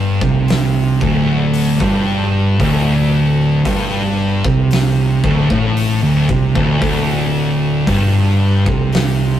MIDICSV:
0, 0, Header, 1, 4, 480
1, 0, Start_track
1, 0, Tempo, 1056338
1, 1178, Time_signature, 4, 2, 24, 8
1, 4270, End_track
2, 0, Start_track
2, 0, Title_t, "Distorted electric guitar"
2, 0, Program_c, 0, 30
2, 0, Note_on_c, 0, 43, 107
2, 94, Note_off_c, 0, 43, 0
2, 100, Note_on_c, 0, 48, 105
2, 452, Note_off_c, 0, 48, 0
2, 464, Note_on_c, 0, 38, 102
2, 814, Note_off_c, 0, 38, 0
2, 826, Note_on_c, 0, 43, 109
2, 1175, Note_off_c, 0, 43, 0
2, 1182, Note_on_c, 0, 38, 111
2, 1653, Note_off_c, 0, 38, 0
2, 1667, Note_on_c, 0, 43, 113
2, 2015, Note_off_c, 0, 43, 0
2, 2026, Note_on_c, 0, 48, 114
2, 2375, Note_off_c, 0, 48, 0
2, 2384, Note_on_c, 0, 38, 104
2, 2494, Note_off_c, 0, 38, 0
2, 2501, Note_on_c, 0, 45, 108
2, 2732, Note_off_c, 0, 45, 0
2, 2739, Note_on_c, 0, 38, 100
2, 2851, Note_off_c, 0, 38, 0
2, 2862, Note_on_c, 0, 48, 107
2, 2972, Note_off_c, 0, 48, 0
2, 2980, Note_on_c, 0, 38, 104
2, 3092, Note_off_c, 0, 38, 0
2, 3099, Note_on_c, 0, 38, 107
2, 3571, Note_off_c, 0, 38, 0
2, 3581, Note_on_c, 0, 43, 101
2, 3932, Note_off_c, 0, 43, 0
2, 3944, Note_on_c, 0, 48, 104
2, 4270, Note_off_c, 0, 48, 0
2, 4270, End_track
3, 0, Start_track
3, 0, Title_t, "Fingered electric bass"
3, 0, Program_c, 1, 33
3, 0, Note_on_c, 1, 31, 102
3, 80, Note_off_c, 1, 31, 0
3, 99, Note_on_c, 1, 36, 97
3, 440, Note_off_c, 1, 36, 0
3, 460, Note_on_c, 1, 26, 95
3, 801, Note_off_c, 1, 26, 0
3, 819, Note_on_c, 1, 31, 104
3, 1161, Note_off_c, 1, 31, 0
3, 1180, Note_on_c, 1, 26, 101
3, 1641, Note_off_c, 1, 26, 0
3, 1659, Note_on_c, 1, 31, 103
3, 2001, Note_off_c, 1, 31, 0
3, 2018, Note_on_c, 1, 36, 96
3, 2360, Note_off_c, 1, 36, 0
3, 2380, Note_on_c, 1, 26, 100
3, 2491, Note_off_c, 1, 26, 0
3, 2501, Note_on_c, 1, 33, 98
3, 2723, Note_off_c, 1, 33, 0
3, 2740, Note_on_c, 1, 26, 101
3, 2851, Note_off_c, 1, 26, 0
3, 2860, Note_on_c, 1, 36, 100
3, 2970, Note_off_c, 1, 36, 0
3, 2980, Note_on_c, 1, 26, 100
3, 3090, Note_off_c, 1, 26, 0
3, 3100, Note_on_c, 1, 26, 98
3, 3560, Note_off_c, 1, 26, 0
3, 3577, Note_on_c, 1, 31, 105
3, 3919, Note_off_c, 1, 31, 0
3, 3936, Note_on_c, 1, 36, 105
3, 4270, Note_off_c, 1, 36, 0
3, 4270, End_track
4, 0, Start_track
4, 0, Title_t, "Drums"
4, 97, Note_on_c, 9, 36, 117
4, 143, Note_off_c, 9, 36, 0
4, 218, Note_on_c, 9, 46, 74
4, 229, Note_on_c, 9, 38, 116
4, 264, Note_off_c, 9, 46, 0
4, 275, Note_off_c, 9, 38, 0
4, 460, Note_on_c, 9, 36, 107
4, 505, Note_off_c, 9, 36, 0
4, 698, Note_on_c, 9, 46, 68
4, 743, Note_off_c, 9, 46, 0
4, 819, Note_on_c, 9, 36, 107
4, 865, Note_off_c, 9, 36, 0
4, 1180, Note_on_c, 9, 36, 113
4, 1181, Note_on_c, 9, 46, 72
4, 1226, Note_off_c, 9, 36, 0
4, 1227, Note_off_c, 9, 46, 0
4, 1660, Note_on_c, 9, 36, 109
4, 1662, Note_on_c, 9, 46, 64
4, 1706, Note_off_c, 9, 36, 0
4, 1707, Note_off_c, 9, 46, 0
4, 2020, Note_on_c, 9, 36, 123
4, 2065, Note_off_c, 9, 36, 0
4, 2139, Note_on_c, 9, 46, 66
4, 2150, Note_on_c, 9, 38, 110
4, 2185, Note_off_c, 9, 46, 0
4, 2196, Note_off_c, 9, 38, 0
4, 2380, Note_on_c, 9, 36, 115
4, 2425, Note_off_c, 9, 36, 0
4, 2500, Note_on_c, 9, 36, 114
4, 2546, Note_off_c, 9, 36, 0
4, 2621, Note_on_c, 9, 46, 67
4, 2666, Note_off_c, 9, 46, 0
4, 2859, Note_on_c, 9, 36, 119
4, 2904, Note_off_c, 9, 36, 0
4, 2979, Note_on_c, 9, 36, 114
4, 3024, Note_off_c, 9, 36, 0
4, 3097, Note_on_c, 9, 46, 73
4, 3098, Note_on_c, 9, 36, 113
4, 3142, Note_off_c, 9, 46, 0
4, 3143, Note_off_c, 9, 36, 0
4, 3578, Note_on_c, 9, 36, 108
4, 3579, Note_on_c, 9, 46, 69
4, 3623, Note_off_c, 9, 36, 0
4, 3624, Note_off_c, 9, 46, 0
4, 3937, Note_on_c, 9, 36, 122
4, 3982, Note_off_c, 9, 36, 0
4, 4056, Note_on_c, 9, 46, 72
4, 4066, Note_on_c, 9, 38, 123
4, 4101, Note_off_c, 9, 46, 0
4, 4112, Note_off_c, 9, 38, 0
4, 4270, End_track
0, 0, End_of_file